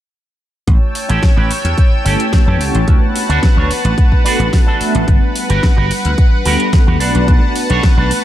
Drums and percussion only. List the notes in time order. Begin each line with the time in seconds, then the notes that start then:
0.68 kick, closed hi-hat
0.95 open hi-hat
1.09 closed hi-hat
1.23 kick, snare, closed hi-hat
1.51 open hi-hat
1.65 closed hi-hat
1.78 kick, closed hi-hat
2.06 open hi-hat
2.20 closed hi-hat
2.33 kick, snare, closed hi-hat
2.61 open hi-hat
2.75 closed hi-hat
2.88 kick, closed hi-hat
3.16 open hi-hat
3.30 closed hi-hat
3.43 kick, snare, closed hi-hat
3.71 open hi-hat
3.85 closed hi-hat
3.98 kick, closed hi-hat
4.12 kick
4.26 open hi-hat
4.40 closed hi-hat
4.53 kick, snare, open hi-hat
4.81 open hi-hat
4.95 closed hi-hat
5.08 kick, closed hi-hat
5.36 open hi-hat
5.50 closed hi-hat
5.63 kick, snare, closed hi-hat
5.91 open hi-hat
6.05 closed hi-hat
6.18 kick, closed hi-hat
6.45 open hi-hat
6.60 closed hi-hat
6.73 kick, snare, closed hi-hat
7.00 open hi-hat
7.15 closed hi-hat
7.28 kick, closed hi-hat
7.56 open hi-hat
7.70 closed hi-hat
7.83 kick, snare, closed hi-hat
8.11 open hi-hat